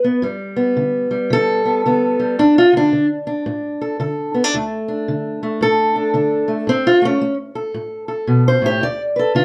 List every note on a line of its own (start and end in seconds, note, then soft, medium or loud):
0.00 0.26 B4 loud
0.04 0.22 B3 soft
0.22 0.73 G2 medium
0.22 1.10 G3 medium
0.56 1.64 B3 medium
0.77 1.27 D3 medium
1.11 2.18 G3 soft
1.30 1.81 D3 medium
1.30 2.40 A4 loud
1.65 1.85 B3 medium
1.86 2.35 D3 medium
1.86 2.39 B3 soft
2.19 2.39 G3 soft
2.39 2.89 D2 medium
2.39 2.57 D4 medium
2.58 2.75 F4 loud
2.73 2.92 D3 soft
2.77 3.05 D4 loud
2.93 3.42 D3 medium
3.27 4.34 D4 medium
3.46 3.96 A2 medium
3.81 4.00 A4 medium
4.00 4.49 D3 medium
4.00 5.62 A4 medium
4.34 4.44 B3 medium
4.44 4.54 D4 soft
4.54 5.04 D2 medium
4.54 5.42 A3 medium
4.88 5.95 D4 soft
5.08 5.57 D3 medium
5.43 6.47 A3 soft
5.61 6.11 A2 medium
5.61 6.69 A4 loud
5.96 6.13 D4 soft
6.14 6.64 D3 medium
6.14 6.66 D4 soft
6.48 6.66 A3 soft
6.67 7.17 A2 medium
6.67 6.86 C4 loud
6.87 7.04 F4 loud
7.02 7.20 A3 soft
7.02 7.34 C#4 loud
7.21 7.71 A3 medium
7.55 8.07 A4 medium
7.74 8.25 A2 medium
8.08 8.46 A4 soft
8.27 8.61 B2 medium
8.48 8.65 C5 medium
8.62 8.82 A2 medium
8.66 8.83 G4 loud
8.81 9.31 D2 medium
8.81 9.01 D5 loud
9.16 9.35 A4 medium
9.16 9.45 B4 medium
9.35 9.45 D3 medium
9.35 9.45 F4 loud